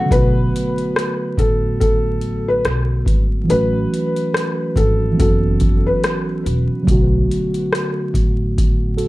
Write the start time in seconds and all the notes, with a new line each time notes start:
Already playing: E3 F#3 A3 B3 C#4 F#4
0.05 D3 F#3
0.11 B1 A3 B3 B4, kick, closed hi-hat
0.15 F#4
0.56 closed hi-hat
0.78 closed hi-hat
0.96 cross-stick, closed hi-hat
1.38 A1 A4, kick, closed hi-hat
1.80 A4, kick, closed hi-hat
2.21 closed hi-hat
2.48 B4
2.65 B1, cross-stick, closed hi-hat
3.06 G#1, kick, closed hi-hat
3.44 E3 F#3
3.49 A1 A3 C#4 B4, closed hi-hat
3.53 F#4
3.94 closed hi-hat
4.16 closed hi-hat
4.34 cross-stick, closed hi-hat
4.76 G#1 A4, kick, closed hi-hat
5.12 E3 F#3
5.17 F#1 B3 C#4 A4, kick, closed hi-hat
5.21 F#4
5.60 kick, closed hi-hat
5.86 B4
6.04 cross-stick, closed hi-hat
6.46 E1, closed hi-hat
6.82 C#3 F#3
6.86 B1 D3 A3 B3, kick, closed hi-hat
6.91 F#4
7.31 closed hi-hat
7.54 closed hi-hat
7.73 cross-stick, closed hi-hat
8.14 A1, kick, closed hi-hat
8.58 kick, closed hi-hat
8.97 F#4 A4, closed hi-hat